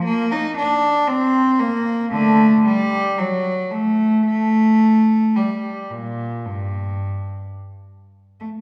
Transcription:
\new Staff \with { instrumentName = "Cello" } { \time 4/4 \key g \minor \tempo 4 = 55 bes16 ees'16 d'8 c'8 bes8 <d a>8 g8 fis8 a8 | a4 g8 bes,8 g,4 r8. a16 | }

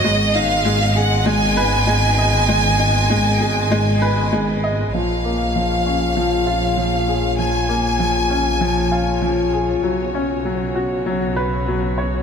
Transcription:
<<
  \new Staff \with { instrumentName = "Violin section" } { \time 4/4 \key ais \phrygian \tempo 4 = 98 dis''8 eis''4 fis''8 gis''2~ | gis''2. r4 | eis''1 | gis''2.~ gis''8 r8 |
r1 | }
  \new Staff \with { instrumentName = "String quartet" } { \time 4/4 \key ais \phrygian << { dis''1~ | dis''1 | cis''1~ | cis''1~ |
cis''1 | } \\ { <dis b gis'>1~ | <dis b gis'>1 | <eis ais gis'>1~ | <eis ais gis'>1 |
<cis b fis'>1 | } >> }
  \new Staff \with { instrumentName = "Upright piano" } { \time 4/4 \key ais \phrygian gis8 dis'8 gis8 gis'8 gis8 b'8 gis8 dis''8 | gis8 dis'8 gis8 gis'8 gis8 b'8 gis8 dis''8 | eis8 ais8 eis8 cis'8 eis8 eis'8 eis8 gis'8 | eis8 ais8 eis8 cis'8 eis8 eis'8 eis8 gis'8 |
fis8 cis'8 fis8 fis'8 fis8 b'8 fis8 cis''8 | }
  \new Staff \with { instrumentName = "Double bass section" } { \clef bass \time 4/4 \key ais \phrygian gis,,1~ | gis,,1 | ais,,1~ | ais,,1 |
b,,1 | }
>>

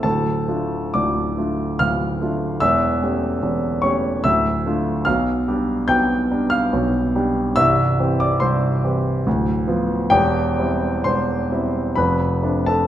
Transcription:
<<
  \new Staff \with { instrumentName = "Grand piano" } { \time 3/4 \key d \dorian \tempo 4 = 72 <a' a''>4 <d'' d'''>4 <f'' f'''>4 | <e'' e'''>4. <cis'' cis'''>8 <e'' e'''>4 | \key c \major <f'' f'''>4 <g'' g'''>8. <f'' f'''>4~ <f'' f'''>16 | <e'' e'''>8. <d'' d'''>16 <c'' c'''>4 r4 |
<g' g''>4 <c'' c'''>4 <b' b''>8. <a' a''>16 | }
  \new Staff \with { instrumentName = "Grand piano" } { \clef bass \time 3/4 \key d \dorian <d,, d,>8 <a d' f'>8 <d,, d,>8 <a d' f'>8 <d,, d,>8 <a d' f'>8 | <e,, e,>8 <a cis' g'>8 <e,, e,>8 <a cis' g'>8 <d,, d,>8 <a d' f'>8 | \key c \major <b,, b,>8 <g d' g'>8 <b,, b,>8 <g d' g'>8 <b,, b,>8 <g d' g'>8 | <c,, c,>8 <e c' g'>8 <c,, c,>8 <e c' g'>8 <d,, d,>8 <f b f'>8 |
<e,, e,>8 <g c' e'>8 <e,, e,>8 <g c' e'>8 <f,, f,>8 <a c' d'>8 | }
>>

